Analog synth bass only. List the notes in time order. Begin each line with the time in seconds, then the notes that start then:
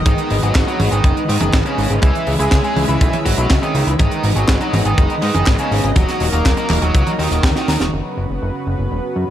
0.06 G#1
0.31 G#1
0.43 G#1
0.55 G#1
0.80 G#1
0.92 G#1
1.04 F#1
1.29 G#2
1.41 F#1
1.53 G#1
1.78 G#1
1.90 G#1
2.03 C#2
2.27 C#2
2.39 C#2
2.52 C#2
2.76 C#2
2.89 C#2
3.01 B1
3.26 G#1
3.38 B1
3.51 C#2
3.75 C#2
3.87 C#2
4.00 G#1
4.24 G#1
4.36 G#1
4.49 G#1
4.73 G#1
4.85 G#1
4.98 F#1
5.22 G#2
5.35 F#1
5.47 G#1
5.71 G#1
5.84 G#1
5.96 D#1
6.21 D#1
6.33 D#1
6.46 D#1
6.70 D#1
6.82 D#1
6.95 C#2
7.19 D#2
7.31 D#1
7.43 D#2
7.68 D#2
7.80 D#1
7.93 F#1
8.17 F#1
8.30 F#1
8.42 F#1
8.67 F#1
8.79 F#1
8.91 E1
9.16 F#2